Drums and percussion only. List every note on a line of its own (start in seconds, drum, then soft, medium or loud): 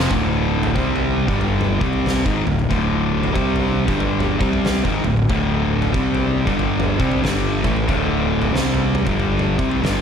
0.10 kick loud
0.10 floor tom medium
0.63 floor tom medium
0.76 kick medium
0.96 floor tom medium
1.28 kick loud
1.41 floor tom medium
1.61 mid tom medium
1.81 kick loud
1.93 floor tom medium
2.06 snare medium
2.06 floor tom medium
2.26 kick loud
2.47 floor tom medium
2.59 floor tom medium
2.71 kick medium
2.71 floor tom medium
3.24 floor tom medium
3.36 kick loud
3.56 floor tom medium
3.88 kick loud
4.00 floor tom medium
4.20 mid tom medium
4.41 kick loud
4.53 floor tom medium
4.65 snare medium
4.65 floor tom medium
4.85 kick medium
5.04 floor tom medium
5.17 floor tom medium
5.30 kick loud
5.30 floor tom medium
5.82 floor tom medium
5.94 kick loud
6.15 floor tom medium
6.47 kick medium
6.59 floor tom medium
6.80 mid tom medium
7.00 kick loud
7.11 floor tom medium
7.24 snare medium
7.24 floor tom medium
7.64 kick loud
7.64 floor tom medium
7.76 floor tom medium
7.89 kick loud
7.89 floor tom medium
8.42 floor tom medium
8.56 snare medium
8.75 floor tom medium
8.95 mid tom medium
9.07 kick loud
9.07 floor tom medium
9.20 floor tom medium
9.20 mid tom medium
9.39 mid tom medium
9.59 kick loud
9.71 floor tom medium
9.84 snare medium
9.84 floor tom medium